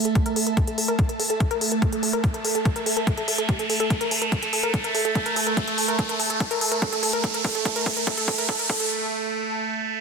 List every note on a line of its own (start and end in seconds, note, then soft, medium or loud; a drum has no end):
0.00 10.01 A3 medium
0.00 8.90 A4 medium
0.00 8.90 E5 medium
0.00 8.90 A5 medium
0.00 riser medium
0.05 0.09 A4 medium
0.05 closed hi-hat soft
0.15 0.18 A4 medium
0.15 kick loud
0.15 closed hi-hat medium
0.26 0.30 A#4 loud
0.26 closed hi-hat medium
0.36 0.41 A4 medium
0.36 open hi-hat loud
0.47 0.49 A#4 medium
0.47 closed hi-hat medium
0.57 0.63 A4 medium
0.57 kick loud
0.57 closed hi-hat medium
0.67 0.72 A4 medium
0.67 closed hi-hat medium
0.78 0.80 A4 medium
0.78 open hi-hat loud
0.88 0.93 A#4 loud
0.88 closed hi-hat soft
0.99 1.03 A4 medium
0.99 kick loud
0.99 closed hi-hat medium
1.09 1.12 A#4 medium
1.09 closed hi-hat medium
1.20 1.26 A4 medium
1.20 open hi-hat loud
1.30 1.34 A4 medium
1.30 closed hi-hat medium
1.40 1.43 A4 medium
1.40 kick loud
1.40 closed hi-hat medium
1.51 1.55 A#4 loud
1.51 closed hi-hat medium
1.61 1.66 A4 medium
1.61 open hi-hat loud
1.72 1.74 A#4 medium
1.72 closed hi-hat soft
1.82 1.88 A4 medium
1.82 kick loud
1.82 closed hi-hat medium
1.92 1.97 A4 medium
1.92 closed hi-hat medium
2.03 2.05 A4 medium
2.03 open hi-hat loud
2.13 2.18 A#4 loud
2.13 closed hi-hat medium
2.24 2.28 A4 medium
2.24 kick loud
2.24 closed hi-hat medium
2.34 2.37 A#4 medium
2.34 closed hi-hat soft
2.45 2.51 A4 medium
2.45 open hi-hat loud
2.55 2.59 A4 medium
2.55 closed hi-hat soft
2.65 2.68 A4 medium
2.65 kick loud
2.65 closed hi-hat medium
2.76 2.80 A#4 medium
2.76 closed hi-hat medium
2.86 2.91 A4 medium
2.86 open hi-hat loud
2.97 2.99 A#4 medium
2.97 closed hi-hat medium
3.07 3.13 A4 medium
3.07 kick loud
3.07 closed hi-hat medium
3.18 3.22 A4 medium
3.18 closed hi-hat soft
3.28 3.30 A4 medium
3.28 open hi-hat loud
3.38 3.43 A4 medium
3.38 closed hi-hat soft
3.49 3.55 G4 medium
3.49 kick loud
3.49 closed hi-hat medium
3.59 3.62 A4 medium
3.59 closed hi-hat soft
3.70 3.76 A4 medium
3.70 open hi-hat loud
3.80 3.86 A4 loud
3.80 closed hi-hat soft
3.90 3.95 A4 medium
3.90 kick loud
3.90 closed hi-hat medium
4.01 4.05 A#4 loud
4.01 closed hi-hat medium
4.11 4.16 A4 medium
4.11 open hi-hat loud
4.22 4.24 A#4 medium
4.22 closed hi-hat medium
4.32 4.38 A4 medium
4.32 kick loud
4.32 closed hi-hat medium
4.42 4.47 A4 medium
4.42 closed hi-hat medium
4.53 4.57 A4 medium
4.53 open hi-hat loud
4.63 4.68 A#4 loud
4.63 closed hi-hat medium
4.74 4.78 A4 medium
4.74 kick loud
4.74 closed hi-hat medium
4.84 4.87 A#4 medium
4.84 closed hi-hat medium
4.95 5.01 A4 medium
4.95 open hi-hat loud
5.05 5.09 A4 medium
5.05 closed hi-hat medium
5.15 5.20 A4 medium
5.15 kick loud
5.15 closed hi-hat medium
5.26 5.30 A#4 loud
5.26 closed hi-hat medium
5.36 5.40 A4 medium
5.36 open hi-hat loud
5.47 5.49 A#4 medium
5.47 closed hi-hat medium
5.57 5.63 A4 medium
5.57 kick loud
5.57 closed hi-hat medium
5.67 5.72 A4 medium
5.67 closed hi-hat soft
5.78 5.82 A4 medium
5.78 open hi-hat loud
5.88 5.93 A#4 loud
5.88 closed hi-hat medium
5.99 6.03 A4 medium
5.99 kick loud
5.99 closed hi-hat medium
6.09 6.12 A#4 medium
6.09 closed hi-hat medium
6.20 6.26 A4 medium
6.20 open hi-hat loud
6.30 6.34 A4 medium
6.30 closed hi-hat medium
6.40 6.45 A4 medium
6.40 kick loud
6.40 closed hi-hat medium
6.51 6.55 A#4 loud
6.51 closed hi-hat medium
6.61 6.66 A4 medium
6.61 open hi-hat loud
6.72 6.74 A#4 medium
6.72 closed hi-hat medium
6.82 6.88 A4 medium
6.82 kick loud
6.82 closed hi-hat medium
6.93 6.97 A4 medium
6.93 closed hi-hat medium
7.03 7.07 A4 medium
7.03 open hi-hat loud
7.13 7.18 A#4 loud
7.13 closed hi-hat medium
7.24 7.28 A4 medium
7.24 kick loud
7.24 closed hi-hat medium
7.34 7.37 A#4 medium
7.34 closed hi-hat medium
7.45 7.51 A4 medium
7.45 kick loud
7.45 open hi-hat loud
7.55 7.59 A4 medium
7.55 closed hi-hat medium
7.65 7.70 A4 medium
7.65 kick loud
7.65 closed hi-hat medium
7.76 7.80 A#4 loud
7.76 closed hi-hat medium
7.86 7.90 A4 medium
7.86 kick loud
7.86 open hi-hat loud
7.97 7.99 A#4 medium
7.97 closed hi-hat medium
8.07 8.13 A4 medium
8.07 kick loud
8.07 closed hi-hat medium
8.17 8.22 A4 medium
8.17 closed hi-hat medium
8.28 8.32 A4 medium
8.28 kick loud
8.28 open hi-hat loud
8.38 8.43 A#4 loud
8.38 closed hi-hat medium
8.49 8.53 A4 medium
8.49 kick loud
8.49 closed hi-hat medium
8.59 8.62 A#4 medium
8.59 closed hi-hat medium
8.70 8.76 A4 medium
8.70 kick loud
8.70 open hi-hat loud
8.80 8.84 A4 medium
8.80 closed hi-hat medium